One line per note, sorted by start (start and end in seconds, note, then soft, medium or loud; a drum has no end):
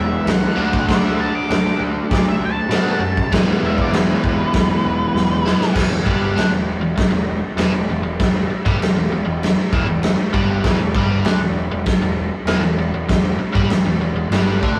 0.00 0.15 E1 medium
0.00 0.54 E3 medium
0.00 0.55 G#3 medium
0.00 0.55 B3 loud
0.00 0.56 E4 loud
0.00 0.27 E5 loud
0.26 0.45 C#2 loud
0.26 snare loud
0.26 crash medium
0.30 0.58 F#5 loud
0.56 0.76 D2 loud
0.56 2.68 D3 medium
0.56 2.68 A3 loud
0.56 2.69 D4 loud
0.60 2.70 F#4 loud
0.73 kick loud
0.88 1.27 D2 loud
0.88 1.03 D5 loud
0.88 kick loud
0.88 snare loud
0.88 crash medium
1.04 1.18 E5 loud
1.20 1.34 A5 medium
1.35 1.49 D6 loud
1.50 1.69 D2 loud
1.50 1.79 D6 loud
1.50 snare loud
1.50 crash medium
1.80 1.99 D2 loud
2.10 2.30 D2 loud
2.10 2.25 D5 loud
2.10 kick loud
2.10 snare loud
2.10 crash medium
2.29 2.41 E5 loud
2.40 2.59 D2 medium
2.45 3.31 A5 loud
2.69 2.89 B2 loud
2.69 2.99 D3 medium
2.69 3.00 A3 medium
2.69 snare loud
2.69 crash medium
2.74 3.01 D4 medium
2.74 3.01 F#4 loud
2.99 3.19 F#2 medium
3.17 kick loud
3.32 3.51 E1 loud
3.32 5.43 E3 loud
3.32 5.43 G#3 medium
3.32 5.44 B3 medium
3.32 5.44 E4 loud
3.32 kick loud
3.32 snare loud
3.32 crash medium
3.63 3.82 E1 medium
3.63 3.78 E5 loud
3.78 3.96 D5 loud
3.78 kick medium
3.93 4.12 E1 medium
3.93 5.73 B4 loud
3.93 snare loud
3.93 crash medium
4.24 4.43 E1 loud
4.24 kick medium
4.53 4.73 E1 loud
4.53 kick loud
4.53 snare loud
4.53 crash medium
4.85 5.04 E1 medium
5.14 5.53 E1 loud
5.14 snare medium
5.45 5.75 G#3 medium
5.45 5.74 B3 medium
5.45 5.73 E4 medium
5.45 snare loud
5.50 5.74 E3 medium
5.61 snare loud
5.74 5.89 E1 medium
5.74 5.89 E2 medium
5.74 5.89 E3 loud
5.74 kick loud
5.74 snare loud
5.74 crash loud
5.74 crash medium
5.90 6.04 E1 medium
5.90 6.04 E2 medium
6.05 6.34 G1 medium
6.05 6.34 G2 medium
6.05 6.35 G3 loud
6.05 kick loud
6.35 6.50 D2 medium
6.35 6.50 D3 medium
6.35 6.50 D4 loud
6.35 snare loud
6.35 crash medium
6.52 6.80 E1 medium
6.52 6.76 E2 medium
6.81 6.95 E1 medium
6.81 6.95 E2 medium
6.96 muted overdriven electric guitar stroke medium
6.96 muted picked electric bass stroke soft
6.96 kick loud
6.96 snare loud
6.96 crash medium
7.11 7.40 E1 medium
7.11 7.36 E2 medium
7.56 7.71 E1 loud
7.56 7.72 E2 medium
7.56 7.72 E3 loud
7.56 snare loud
7.56 crash medium
7.73 7.87 E1 medium
7.73 7.89 E2 medium
7.88 8.01 E1 medium
7.88 8.02 E2 medium
8.02 8.17 E1 medium
8.02 8.19 E2 medium
8.20 8.48 E1 medium
8.20 8.44 E2 medium
8.20 kick loud
8.20 snare loud
8.20 crash medium
8.50 muted picked electric bass stroke soft
8.50 muted overdriven electric guitar stroke medium
8.65 8.79 G1 loud
8.65 8.79 G2 loud
8.65 8.80 G3 loud
8.65 kick loud
8.80 8.94 E1 medium
8.80 8.95 E2 medium
8.80 snare loud
8.80 crash medium
8.95 9.09 E1 medium
8.95 9.11 E2 medium
9.10 9.24 E1 medium
9.10 9.24 E2 medium
9.25 9.54 E1 medium
9.25 9.50 E2 medium
9.43 snare loud
9.43 crash medium
9.72 9.85 E1 loud
9.72 9.86 E2 medium
9.72 9.87 E3 loud
9.72 kick loud
9.86 10.15 E1 medium
9.86 10.11 E2 medium
10.03 snare loud
10.03 crash medium
10.33 10.61 G1 loud
10.33 10.62 G2 medium
10.33 10.63 G3 loud
10.33 kick loud
10.64 10.78 E1 loud
10.64 10.78 E2 medium
10.64 10.79 E3 loud
10.64 kick loud
10.64 snare loud
10.64 crash medium
10.80 10.94 E1 medium
10.80 10.95 E2 medium
10.94 11.23 G1 medium
10.94 11.24 G2 loud
10.94 11.25 G3 loud
10.94 kick loud
11.25 11.39 D2 loud
11.25 11.39 D3 medium
11.25 11.39 D4 loud
11.25 snare loud
11.25 crash medium
11.40 11.68 E1 medium
11.40 11.64 E2 medium
11.71 11.85 E1 medium
11.71 11.86 E2 medium
11.86 muted picked electric bass stroke soft
11.86 muted overdriven electric guitar stroke medium
11.86 kick loud
11.86 snare loud
11.86 crash medium
12.01 12.30 E1 medium
12.01 12.26 E2 medium
12.45 12.60 E1 loud
12.45 12.62 E2 medium
12.45 12.62 E3 loud
12.45 snare loud
12.45 crash medium
12.61 12.76 E1 medium
12.61 12.77 E2 medium
12.77 12.91 E1 medium
12.77 12.93 E2 medium
12.93 13.07 E1 medium
12.93 13.07 E2 medium
13.08 13.37 E1 medium
13.08 13.33 E2 medium
13.08 kick loud
13.08 snare loud
13.08 crash medium
13.38 muted picked electric bass stroke soft
13.38 muted overdriven electric guitar stroke medium
13.53 13.67 G1 loud
13.53 13.68 G2 medium
13.53 13.69 G3 loud
13.53 kick loud
13.68 13.83 E1 medium
13.68 13.85 E2 medium
13.68 snare loud
13.68 crash medium
13.85 13.97 E1 medium
13.85 14.00 E2 medium
13.98 14.13 E1 medium
13.98 14.15 E2 medium
14.14 14.28 E1 medium
14.14 14.31 E2 medium
14.29 14.58 G1 medium
14.29 14.61 G2 medium
14.29 crash medium
14.33 14.62 G3 loud
14.33 snare loud
14.62 14.74 D2 medium
14.62 14.77 D3 medium
14.62 14.77 D4 loud
14.62 kick loud
14.75 14.79 B1 loud